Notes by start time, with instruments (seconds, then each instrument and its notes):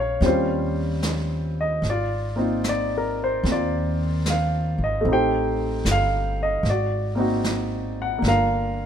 Already playing: upright bass A#1, grand piano G#3 A#3 C#4 F4 F5 G5
0.00 grand piano C#5
0.21 upright bass D#2, grand piano G3 C4 C#4 F4, brush sweep, snare
0.26 grand piano G4 C5
1.02 snare, hi-hat pedal
1.61 grand piano D#5
1.82 upright bass G#1, brush sweep, snare
1.90 grand piano F4 D5
2.36 grand piano A#3 C4 D#4
2.41 grand piano F4
2.64 snare, hi-hat pedal
2.69 grand piano D5
2.98 grand piano A#4
3.24 grand piano C5
3.43 upright bass D#2, grand piano C4, brush sweep, snare
3.51 grand piano F4 D5
4.26 snare, hi-hat pedal
4.30 grand piano F5
4.78 upright bass G#1
4.84 grand piano D#5
5.01 grand piano A3 C4
5.05 upright bass A1, grand piano D#4, brush sweep
5.12 grand piano G4 C5 G5
5.85 upright bass G1, snare, hi-hat pedal
5.91 grand piano F5
6.43 grand piano D#5
6.63 upright bass G#1, brush sweep, snare
6.70 grand piano F#4 D5
7.15 grand piano A#3 C4 D#4
7.20 grand piano F#4
7.44 snare, hi-hat pedal
8.02 grand piano F#5
8.18 upright bass G1, grand piano A#3 D4
8.23 grand piano F4, brush sweep, snare
8.28 grand piano A#4 F5